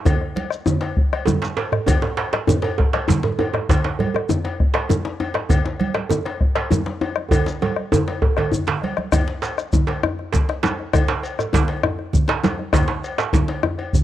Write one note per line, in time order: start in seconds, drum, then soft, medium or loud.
0.05 bombo rim soft
0.05 bombo low loud
0.05 cowbell medium
0.05 djembe slap soft
0.05 djembe tone medium
0.05 high conga soft
0.05 djembe bass medium
0.05 low conga loud
0.05 shekere medium
0.21 bombo rim soft
0.21 high conga soft
0.35 cowbell soft
0.35 djembe slap soft
0.35 high conga medium
0.51 bombo rim medium
0.51 shekere soft
0.66 bombo rim soft
0.66 djembe slap soft
0.66 djembe tone medium
0.66 djembe bass medium
0.66 low conga medium
0.66 shekere medium
0.81 bombo rim soft
0.81 cowbell soft
0.81 djembe slap medium
0.97 bombo low loud
0.97 high conga soft
1.12 bombo rim medium
1.12 cowbell medium
1.12 high conga soft
1.26 djembe tone loud
1.26 high conga medium
1.26 djembe bass medium
1.26 low conga medium
1.26 shekere medium
1.42 djembe slap medium
1.42 high conga soft
1.42 shekere soft
1.57 cowbell soft
1.57 djembe slap soft
1.57 djembe slap medium
1.72 bombo rim medium
1.72 djembe slap soft
1.72 djembe bass medium
1.86 bombo low loud
1.86 cowbell medium
1.86 djembe slap soft
1.86 djembe tone medium
1.86 high conga soft
1.86 djembe bass medium
1.86 low conga medium
1.86 shekere medium
2.02 bombo rim soft
2.02 djembe slap medium
2.02 djembe tone loud
2.17 bombo rim soft
2.17 cowbell medium
2.17 djembe slap medium
2.33 bombo rim medium
2.33 djembe slap medium
2.33 high conga soft
2.47 bombo rim soft
2.47 djembe slap soft
2.47 djembe tone medium
2.47 djembe bass medium
2.47 low conga medium
2.47 shekere medium
2.62 cowbell medium
2.62 djembe slap medium
2.62 djembe tone medium
2.78 bombo rim soft
2.78 bombo low loud
2.78 djembe tone loud
2.78 high conga soft
2.93 bombo rim medium
2.93 cowbell medium
2.93 djembe slap medium
2.93 high conga soft
3.08 djembe slap medium
3.08 high conga medium
3.08 djembe bass medium
3.08 low conga medium
3.08 shekere medium
3.23 djembe slap medium
3.23 high conga soft
3.23 djembe bass medium
3.39 cowbell medium
3.39 djembe slap soft
3.39 djembe tone medium
3.53 bombo rim medium
3.53 djembe tone loud
3.53 high conga soft
3.69 bombo low loud
3.69 cowbell medium
3.69 djembe slap medium
3.69 djembe slap soft
3.69 high conga soft
3.69 djembe bass medium
3.69 low conga medium
3.69 shekere medium
3.84 bombo rim soft
3.84 djembe slap medium
3.99 bombo rim soft
3.99 cowbell medium
3.99 high conga medium
3.99 djembe bass medium
4.14 bombo rim medium
4.14 djembe tone medium
4.14 high conga soft
4.29 bombo rim soft
4.29 djembe slap soft
4.29 djembe tone medium
4.29 djembe bass medium
4.29 low conga medium
4.29 shekere medium
4.45 cowbell soft
4.45 djembe slap medium
4.60 bombo rim soft
4.60 bombo low loud
4.60 high conga soft
4.74 bombo rim medium
4.74 cowbell soft
4.74 djembe slap medium
4.74 high conga soft
4.89 djembe tone medium
4.89 high conga medium
4.89 djembe bass medium
4.89 low conga medium
4.89 shekere medium
5.05 djembe slap medium
5.05 high conga soft
5.20 cowbell medium
5.20 djembe slap soft
5.20 djembe tone medium
5.34 bombo rim medium
5.34 djembe slap medium
5.34 high conga soft
5.49 bombo low loud
5.49 cowbell medium
5.49 djembe slap soft
5.49 djembe tone medium
5.49 high conga soft
5.49 low conga medium
5.49 djembe bass medium
5.49 shekere soft
5.65 bombo rim soft
5.65 djembe slap medium
5.80 cowbell medium
5.80 high conga medium
5.94 bombo rim medium
5.94 djembe slap medium
5.94 high conga soft
6.09 bombo rim soft
6.09 djembe slap soft
6.09 djembe tone medium
6.09 low conga medium
6.09 shekere medium
6.25 cowbell medium
6.25 djembe slap medium
6.41 bombo rim soft
6.41 bombo low loud
6.41 high conga soft
6.55 bombo rim medium
6.55 cowbell medium
6.55 djembe slap medium
6.55 high conga soft
6.71 djembe tone medium
6.71 high conga medium
6.71 djembe bass medium
6.71 low conga medium
6.71 shekere medium
6.86 djembe slap medium
6.86 high conga soft
7.01 cowbell soft
7.01 djembe slap soft
7.01 djembe tone medium
7.16 bombo rim medium
7.16 high conga soft
7.31 bombo low loud
7.31 cowbell medium
7.31 djembe tone loud
7.31 djembe bass medium
7.31 low conga medium
7.31 shekere medium
7.46 djembe slap medium
7.46 high conga soft
7.46 shekere soft
7.61 cowbell medium
7.61 djembe slap soft
7.61 djembe tone loud
7.61 high conga medium
7.76 bombo rim medium
7.92 djembe tone medium
7.92 djembe tone loud
7.92 high conga soft
7.92 djembe bass medium
7.92 low conga medium
7.92 shekere medium
8.08 cowbell soft
8.08 djembe slap medium
8.08 high conga soft
8.22 bombo rim soft
8.22 bombo low medium
8.22 djembe slap soft
8.22 djembe tone medium
8.22 high conga soft
8.37 bombo rim medium
8.37 cowbell medium
8.37 djembe slap soft
8.37 djembe tone loud
8.37 low conga soft
8.52 bombo rim soft
8.52 djembe bass medium
8.52 low conga soft
8.52 shekere medium
8.67 djembe slap medium
8.67 djembe slap loud
8.67 low conga soft
8.82 bombo rim soft
8.82 cowbell medium
8.82 high conga medium
8.97 bombo rim medium
8.97 high conga medium
9.12 bombo rim loud
9.12 bombo low loud
9.12 cowbell medium
9.12 djembe bass medium
9.12 low conga medium
9.12 shekere medium
9.28 djembe slap medium
9.42 cowbell medium
9.42 djembe slap medium
9.42 shekere soft
9.58 bombo rim medium
9.58 djembe slap soft
9.58 shekere soft
9.73 bombo rim soft
9.73 bombo low loud
9.73 djembe tone medium
9.73 high conga medium
9.73 low conga medium
9.73 shekere medium
9.87 cowbell soft
9.87 djembe slap medium
9.87 djembe slap soft
10.03 bombo rim loud
10.03 djembe bass medium
10.19 bombo rim soft
10.19 djembe slap soft
10.32 bombo low loud
10.32 djembe slap medium
10.32 djembe slap soft
10.32 low conga medium
10.32 shekere medium
10.49 bombo rim medium
10.49 djembe slap medium
10.63 cowbell soft
10.63 djembe slap loud
10.63 djembe slap soft
10.63 djembe tone medium
10.63 high conga medium
10.63 shekere soft
10.79 bombo rim soft
10.79 djembe slap soft
10.93 bombo rim loud
10.93 bombo low loud
10.93 cowbell medium
10.93 djembe tone medium
10.93 djembe bass medium
10.93 low conga medium
10.93 shekere medium
11.08 djembe slap loud
11.08 djembe slap medium
11.23 cowbell medium
11.23 shekere soft
11.39 bombo rim medium
11.39 djembe slap soft
11.39 djembe tone medium
11.39 shekere soft
11.53 bombo rim soft
11.53 bombo low loud
11.53 djembe slap loud
11.53 djembe tone medium
11.53 high conga medium
11.53 low conga medium
11.53 shekere medium
11.68 cowbell soft
11.68 djembe slap medium
11.68 high conga soft
11.83 bombo rim loud
11.83 djembe tone medium
11.83 djembe bass medium
11.99 bombo rim soft
11.99 djembe slap soft
12.13 bombo low loud
12.13 djembe slap soft
12.13 low conga medium
12.13 shekere medium
12.28 bombo rim medium
12.28 djembe slap medium
12.28 djembe slap loud
12.44 cowbell soft
12.44 djembe slap soft
12.44 djembe slap medium
12.44 djembe tone medium
12.44 high conga medium
12.44 shekere soft
12.59 bombo rim soft
12.59 djembe slap soft
12.73 bombo rim medium
12.73 bombo low loud
12.73 cowbell medium
12.73 djembe slap medium
12.73 djembe bass medium
12.73 low conga medium
12.73 shekere medium
12.88 djembe slap medium
13.04 cowbell medium
13.04 shekere soft
13.18 bombo rim medium
13.18 djembe slap soft
13.18 djembe slap loud
13.18 shekere soft
13.33 bombo rim soft
13.33 bombo low medium
13.33 djembe slap medium
13.33 djembe tone medium
13.33 high conga medium
13.33 low conga medium
13.33 shekere medium
13.48 cowbell soft
13.48 djembe slap medium
13.48 high conga soft
13.63 bombo rim medium
13.63 djembe bass medium
13.78 bombo rim soft
13.78 cowbell soft
13.78 djembe slap soft
13.93 bombo low loud
13.93 djembe slap soft
13.93 low conga medium
13.93 shekere medium